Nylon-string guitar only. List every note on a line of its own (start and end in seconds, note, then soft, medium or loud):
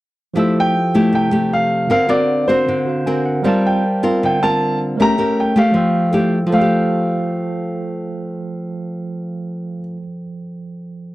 0.35 1.11 F3 medium
0.35 0.75 A3 medium
0.35 0.75 E4 medium
0.35 0.75 G4 medium
0.95 1.30 A3 medium
0.95 1.30 E4 medium
0.95 1.30 G4 medium
1.13 1.88 C3 medium
1.31 1.88 A3 medium
1.31 1.89 G4 medium
1.90 2.65 D3 medium
1.90 2.06 C4 medium
1.90 2.07 F#4 medium
1.90 2.07 A#4 medium
2.09 2.45 C4 medium
2.09 2.45 F#4 medium
2.09 2.45 A#4 medium
2.49 3.03 C4 medium
2.49 3.03 F#4 medium
2.49 3.04 A#4 medium
2.68 3.43 D3 medium
3.07 3.42 C4 soft
3.07 3.42 F#4 medium
3.07 3.42 A#4 medium
3.44 4.20 G3 medium
3.44 3.83 C4 medium
3.44 3.83 F4 medium
3.44 3.83 A#4 medium
4.03 4.38 C4 medium
4.03 4.38 F4 medium
4.03 4.38 A#4 medium
4.23 4.97 D3 medium
4.43 4.98 C4 medium
4.43 4.98 F4 medium
4.43 4.98 A#4 medium
5.00 5.55 A3 medium
5.00 5.15 C#4 medium
5.00 5.15 G4 medium
5.00 5.16 A#4 medium
5.18 5.53 C#4 medium
5.18 5.53 G4 medium
5.18 5.54 A#4 medium
5.56 6.10 A3 medium
5.56 6.11 G4 medium
5.74 6.45 F3 medium
6.13 6.38 A3 medium
6.13 6.38 E4 medium
6.13 6.38 G4 medium
6.47 9.97 F3 medium
6.52 10.02 A3 medium
6.61 10.11 G4 medium